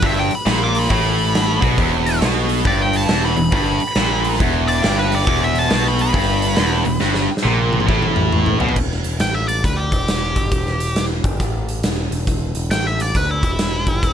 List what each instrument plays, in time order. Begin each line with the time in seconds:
0.02 picked electric bass G1, distorted electric guitar G2, lead electric guitar E5, kick, open hi-hat
0.19 lead electric guitar G5
0.31 open hi-hat
0.35 lead electric guitar B5
0.46 picked electric bass A#1, distorted electric guitar A#2, snare, open hi-hat
0.64 lead electric guitar D6
0.75 open hi-hat
0.79 lead electric guitar B5
0.84 snare
0.90 picked electric bass A1, distorted electric guitar A2, lead electric guitar B5, kick, open hi-hat
1.19 open hi-hat
1.35 snare, open hi-hat
1.61 picked electric bass B1, distorted electric guitar B2, kick, open hi-hat
1.78 picked electric bass E1, distorted electric guitar E2, kick, open hi-hat
2.06 open hi-hat
2.20 picked electric bass B1, distorted electric guitar B2, snare, open hi-hat
2.49 open hi-hat
2.65 picked electric bass G1, distorted electric guitar G2, lead electric guitar D5, kick, open hi-hat
2.82 lead electric guitar G5
2.93 lead electric guitar A5, open hi-hat
3.09 picked electric bass E1, distorted electric guitar E2, snare, open hi-hat
3.25 lead electric guitar B5
3.37 picked electric bass E1, distorted electric guitar E2, open hi-hat
3.52 picked electric bass G1, distorted electric guitar G2, lead electric guitar B5, kick, open hi-hat
3.80 open hi-hat
3.95 picked electric bass A#1, distorted electric guitar A#2, snare, open hi-hat
4.25 open hi-hat
4.34 snare
4.40 picked electric bass E1, distorted electric guitar E2, kick, open hi-hat
4.68 lead electric guitar D5, open hi-hat
4.83 picked electric bass G1, distorted electric guitar G2, snare, open hi-hat
4.99 lead electric guitar B4
5.12 lead electric guitar D5, open hi-hat
5.27 picked electric bass E1, distorted electric guitar E2, kick, open hi-hat
5.44 lead electric guitar E5
5.55 lead electric guitar A5, open hi-hat
5.69 picked electric bass B1, distorted electric guitar B2, snare, open hi-hat
5.88 lead electric guitar B5
5.99 lead electric guitar B5, open hi-hat
6.13 picked electric bass G1, distorted electric guitar G2, kick, open hi-hat
6.42 open hi-hat
6.56 picked electric bass E1, distorted electric guitar E2, snare, open hi-hat
6.85 picked electric bass E1, distorted electric guitar E2, open hi-hat
7.00 picked electric bass G1, distorted electric guitar G2, snare
7.14 snare
7.37 snare
7.43 picked electric bass A#1, distorted electric guitar A#2, high tom
7.73 high tom
7.80 mid tom
7.87 picked electric bass A1, distorted electric guitar A2, kick
8.02 mid tom
8.16 mid tom
8.32 mid tom
8.46 floor tom
8.60 picked electric bass B1, distorted electric guitar B2, floor tom
8.69 floor tom
8.76 picked electric bass E1, kick, crash
8.91 snare
9.04 picked electric bass E1, closed hi-hat
9.20 picked electric bass A1, lead electric guitar G5, snare, closed hi-hat
9.35 lead electric guitar E5
9.48 lead electric guitar D5, closed hi-hat
9.64 picked electric bass D2, lead electric guitar B4, kick, closed hi-hat
9.77 lead electric guitar G4
9.92 picked electric bass E1, kick, closed hi-hat
10.08 snare, closed hi-hat
10.36 picked electric bass G1, kick, closed hi-hat
10.52 picked electric bass E1, kick, closed hi-hat
10.66 snare
10.80 closed hi-hat
10.96 snare, closed hi-hat
11.24 picked electric bass G1, kick, closed hi-hat
11.40 picked electric bass A1, kick, closed hi-hat
11.69 closed hi-hat
11.83 picked electric bass E1, snare, closed hi-hat
12.11 picked electric bass E1, closed hi-hat
12.27 picked electric bass E1, kick, closed hi-hat
12.55 picked electric bass E1, closed hi-hat
12.70 picked electric bass A1, lead electric guitar G5, snare, closed hi-hat
12.87 lead electric guitar E5
13.00 lead electric guitar D5, closed hi-hat
13.15 picked electric bass D2, lead electric guitar B4, kick, closed hi-hat
13.31 lead electric guitar E4
13.43 picked electric bass E1, kick, closed hi-hat
13.59 snare, closed hi-hat
13.87 picked electric bass G1, kick, closed hi-hat
14.03 picked electric bass E1, kick, closed hi-hat